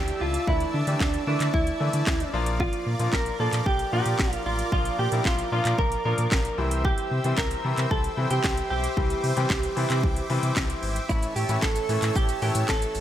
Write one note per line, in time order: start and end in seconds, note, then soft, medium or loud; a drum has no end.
0.00 0.12 D2 loud
0.00 0.34 E3 medium
0.00 0.34 A3 medium
0.00 0.35 D4 medium
0.00 0.35 E4 medium
0.00 0.23 G4 loud
0.00 6.54 D5 medium
0.00 2.29 E5 medium
0.00 2.29 A5 medium
0.00 2.29 E6 medium
0.08 closed hi-hat medium
0.21 0.38 C#2 medium
0.21 0.48 F4 loud
0.34 closed hi-hat medium
0.47 0.65 D2 loud
0.47 0.81 E3 medium
0.47 0.81 A3 medium
0.47 0.81 D4 medium
0.47 0.81 E4 medium
0.47 0.75 E4 medium
0.47 kick loud
0.60 closed hi-hat medium
0.74 0.83 D3 loud
0.74 1.23 D4 medium
0.87 0.96 D3 medium
0.87 1.21 E3 medium
0.87 1.21 A3 medium
0.87 1.21 D4 medium
0.87 1.21 G4 medium
0.87 closed hi-hat medium
1.00 1.18 D2 loud
1.00 kick loud
1.00 snare medium
1.00 clap loud
1.14 closed hi-hat medium
1.27 1.36 D3 loud
1.27 1.72 E3 medium
1.27 1.72 A3 medium
1.27 1.53 D4 medium
1.27 1.72 D4 medium
1.27 1.72 E4 medium
1.40 1.49 D3 loud
1.40 clap medium
1.40 closed hi-hat medium
1.54 1.71 D2 loud
1.54 2.29 E4 medium
1.54 kick loud
1.67 closed hi-hat medium
1.80 1.89 D3 loud
1.80 2.33 E3 medium
1.80 2.33 A3 medium
1.80 2.32 D4 medium
1.80 2.33 E4 medium
1.93 2.02 D3 loud
1.93 closed hi-hat medium
2.07 2.24 D2 loud
2.07 kick loud
2.07 snare medium
2.07 clap loud
2.20 closed hi-hat medium
2.33 2.68 A#1 loud
2.33 2.89 F3 medium
2.33 2.89 A#3 medium
2.33 2.89 D4 medium
2.33 2.89 F4 loud
2.33 6.54 A#4 medium
2.33 6.54 D6 medium
2.46 closed hi-hat medium
2.60 3.15 F4 loud
2.60 kick loud
2.73 closed hi-hat medium
2.86 2.95 A#2 loud
2.99 3.08 A#2 loud
2.99 3.33 F3 medium
2.99 3.33 A#3 medium
2.99 3.33 D4 medium
2.99 3.33 F4 medium
2.99 closed hi-hat medium
3.13 3.30 A#1 loud
3.13 3.40 A#4 loud
3.13 kick loud
3.13 snare medium
3.13 clap loud
3.26 closed hi-hat medium
3.39 3.48 A#2 loud
3.39 3.84 F3 medium
3.39 3.84 A#3 medium
3.39 3.84 D4 medium
3.39 3.84 F4 medium
3.39 3.66 A4 loud
3.53 3.61 A#2 loud
3.53 clap medium
3.53 closed hi-hat medium
3.66 3.83 A#1 loud
3.66 3.92 G4 loud
3.66 kick loud
3.79 closed hi-hat medium
3.92 4.01 A#2 loud
3.92 4.59 F3 medium
3.92 4.59 A#3 medium
3.92 4.59 D4 medium
3.92 4.59 F4 medium
3.92 4.42 G4 loud
4.06 4.14 A#2 medium
4.06 closed hi-hat medium
4.19 4.37 A#1 loud
4.19 kick loud
4.19 snare medium
4.19 clap loud
4.33 closed hi-hat medium
4.46 4.63 A1 medium
4.46 4.71 F4 medium
4.59 closed hi-hat medium
4.72 4.89 A#1 loud
4.72 5.06 F3 medium
4.72 5.06 A#3 medium
4.72 5.06 D4 medium
4.72 4.99 F4 medium
4.72 5.06 F4 medium
4.72 kick loud
4.85 closed hi-hat medium
4.99 5.07 A#2 medium
4.99 5.25 G4 loud
5.12 5.21 A#2 loud
5.12 5.45 F3 medium
5.12 5.45 A#3 medium
5.12 5.46 D4 medium
5.12 5.46 E4 medium
5.12 closed hi-hat medium
5.25 5.42 A#1 loud
5.25 5.51 F4 medium
5.25 kick loud
5.25 snare medium
5.25 clap loud
5.39 closed hi-hat medium
5.52 5.60 A#2 loud
5.52 5.96 F3 medium
5.52 5.96 A#3 medium
5.52 5.96 D4 medium
5.52 5.97 F4 medium
5.52 5.78 F4 medium
5.65 5.74 A#2 loud
5.65 clap medium
5.65 closed hi-hat medium
5.78 5.96 A#1 loud
5.78 6.04 A#4 loud
5.78 kick loud
5.92 closed hi-hat medium
6.05 6.14 A#2 loud
6.05 6.58 F3 medium
6.05 6.58 A#3 medium
6.05 6.58 D4 medium
6.05 6.58 F4 medium
6.05 6.85 A#4 loud
6.18 6.27 A#2 loud
6.18 closed hi-hat medium
6.32 6.49 A#1 loud
6.32 kick loud
6.32 snare medium
6.32 clap loud
6.45 closed hi-hat medium
6.58 6.93 C2 loud
6.58 7.14 E3 medium
6.58 7.14 G3 medium
6.58 7.14 C4 medium
6.58 7.14 E4 medium
6.58 11.05 C5 medium
6.58 13.00 E5 medium
6.58 11.05 G5 medium
6.58 8.68 E6 medium
6.71 closed hi-hat medium
6.85 7.38 G4 loud
6.85 kick loud
6.98 closed hi-hat soft
7.11 7.20 C3 loud
7.24 7.33 C3 medium
7.24 7.58 E3 medium
7.24 7.58 G3 medium
7.24 7.58 C4 medium
7.24 7.58 E4 medium
7.24 closed hi-hat medium
7.37 7.55 C2 loud
7.37 7.91 A#4 medium
7.37 kick loud
7.37 snare medium
7.37 clap medium
7.37 clap loud
7.51 closed hi-hat medium
7.64 7.73 C3 loud
7.64 8.09 E3 medium
7.64 8.09 G3 medium
7.64 8.09 C4 medium
7.64 8.09 E4 medium
7.78 7.86 C3 loud
7.78 clap medium
7.78 closed hi-hat medium
7.91 8.08 C2 loud
7.91 8.30 A4 loud
7.91 kick loud
8.04 closed hi-hat medium
8.17 8.26 C3 loud
8.17 8.84 E3 medium
8.17 8.84 G3 medium
8.17 8.84 C4 medium
8.17 8.84 E4 medium
8.30 8.39 C3 medium
8.30 8.69 G4 medium
8.30 closed hi-hat medium
8.44 8.61 C2 loud
8.44 kick loud
8.44 snare medium
8.44 clap loud
8.44 clap medium
8.57 closed hi-hat medium
8.70 8.88 B1 medium
8.70 10.26 G4 medium
8.70 11.07 D6 loud
8.84 closed hi-hat medium
8.97 9.14 C2 loud
8.97 9.30 E3 medium
8.97 9.30 G3 medium
8.97 9.30 C4 medium
8.97 9.31 E4 medium
8.97 kick loud
9.10 closed hi-hat medium
9.24 9.32 C3 loud
9.24 open hi-hat medium
9.37 9.45 C3 loud
9.37 9.70 E3 medium
9.37 9.70 G3 medium
9.37 9.70 C4 medium
9.37 9.70 G4 loud
9.37 closed hi-hat medium
9.50 9.67 C2 loud
9.50 kick loud
9.50 snare medium
9.50 clap loud
9.50 clap medium
9.63 closed hi-hat medium
9.76 9.85 C3 loud
9.76 10.21 E3 medium
9.76 10.21 G3 medium
9.76 10.21 C4 medium
9.76 10.21 E4 loud
9.76 open hi-hat medium
9.90 10.05 C3 loud
9.90 clap medium
9.90 closed hi-hat medium
10.03 10.21 C2 loud
10.03 kick loud
10.16 closed hi-hat medium
10.30 10.38 C3 loud
10.30 10.96 E3 medium
10.30 10.96 G3 medium
10.30 10.97 C4 medium
10.30 10.97 E4 loud
10.30 open hi-hat medium
10.43 10.52 C3 loud
10.43 closed hi-hat medium
10.56 10.74 C2 loud
10.56 kick loud
10.56 snare medium
10.56 clap loud
10.56 clap medium
10.70 closed hi-hat medium
10.83 11.00 G#1 loud
10.83 open hi-hat medium
10.96 closed hi-hat medium
11.09 11.27 A1 loud
11.09 11.43 E3 medium
11.09 11.43 A3 medium
11.09 11.43 C#4 medium
11.09 11.35 E4 loud
11.09 11.43 E4 medium
11.09 13.00 C#5 medium
11.09 13.00 A5 medium
11.09 13.00 E6 medium
11.09 kick loud
11.09 shaker medium
11.23 closed hi-hat medium
11.23 shaker medium
11.36 11.44 A2 loud
11.36 11.62 G4 loud
11.36 open hi-hat medium
11.36 shaker medium
11.49 11.58 A2 loud
11.49 11.82 E3 medium
11.49 11.83 A3 medium
11.49 11.83 C#4 medium
11.49 11.83 E4 medium
11.49 closed hi-hat medium
11.49 shaker medium
11.62 11.80 A1 loud
11.62 12.16 A4 loud
11.62 kick loud
11.62 snare medium
11.62 clap medium
11.62 shaker medium
11.76 closed hi-hat medium
11.76 shaker medium
11.89 11.98 A2 loud
11.89 12.34 E3 medium
11.89 12.34 A3 medium
11.89 12.34 C#4 medium
11.89 12.34 E4 medium
11.89 open hi-hat medium
11.89 shaker medium
12.02 12.11 A2 loud
12.02 clap medium
12.02 closed hi-hat medium
12.02 shaker medium
12.16 12.33 A1 loud
12.16 12.41 G4 loud
12.16 kick loud
12.16 shaker medium
12.29 closed hi-hat medium
12.29 shaker medium
12.42 12.51 A2 loud
12.42 13.00 E3 medium
12.42 13.00 A3 medium
12.42 13.00 C#4 medium
12.42 13.00 E4 medium
12.42 12.68 G4 loud
12.42 open hi-hat medium
12.42 shaker medium
12.55 12.64 A2 loud
12.55 closed hi-hat medium
12.55 shaker medium
12.68 12.86 A1 loud
12.68 13.00 A4 loud
12.68 kick loud
12.68 snare medium
12.68 clap loud
12.68 clap medium
12.68 shaker medium
12.82 closed hi-hat medium
12.82 shaker medium
12.95 13.00 G#1 medium
12.95 open hi-hat medium
12.95 shaker medium